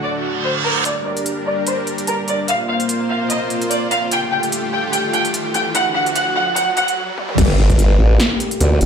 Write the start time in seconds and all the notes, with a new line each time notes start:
Already playing: D3 A3 F#4
0.03 D5, reverse cymbal
0.44 C5
0.65 A#4
0.85 G3 D4 A#4 D5, closed hi-hat, riser
1.05 D5
1.17 closed hi-hat
1.26 closed hi-hat
1.46 D5
1.67 C5, closed hi-hat
1.87 closed hi-hat
1.98 closed hi-hat
2.07 A#4, closed hi-hat
2.28 D5, closed hi-hat
2.48 A#3 F4 C5 F5, closed hi-hat
2.69 F5
2.80 closed hi-hat
2.89 closed hi-hat
3.09 F5
3.30 D#5, closed hi-hat
3.50 closed hi-hat
3.62 closed hi-hat
3.71 D5, closed hi-hat
3.91 F5, closed hi-hat
4.11 A3 G4 G5, closed hi-hat
4.32 G5
4.43 closed hi-hat
4.52 closed hi-hat
4.73 G5
4.93 G5, closed hi-hat
5.13 G5, closed hi-hat
5.25 closed hi-hat
5.34 closed hi-hat
5.54 G5, closed hi-hat
5.75 D3 F#4 F#5, closed hi-hat
5.95 F#5
6.06 closed hi-hat
6.15 F#5, closed hi-hat
6.36 F#5
6.56 F#5, closed hi-hat
6.77 F#5, closed hi-hat
6.88 closed hi-hat
7.18 high tom
7.29 mid tom
7.38 G1 A3 A#3 G4, kick, closed hi-hat, crash, impact
7.58 G1
7.70 kick, closed hi-hat
7.79 closed hi-hat
7.99 A1
8.20 snare, closed hi-hat
8.40 closed hi-hat
8.51 closed hi-hat
8.60 D2, closed hi-hat
8.81 F1, closed hi-hat